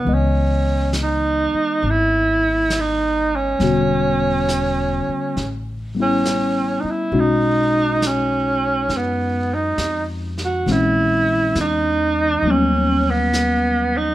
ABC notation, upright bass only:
X:1
M:4/4
L:1/8
Q:"Swing" 1/4=68
K:C#dor
V:1 name="Upright bass" clef=bass
C,,3 z G,,,4 | E,,,3 z =A,,,3 z | B,,,4 F,,2 ^E,,2 | A,,,2 E,,2 D,,4 |]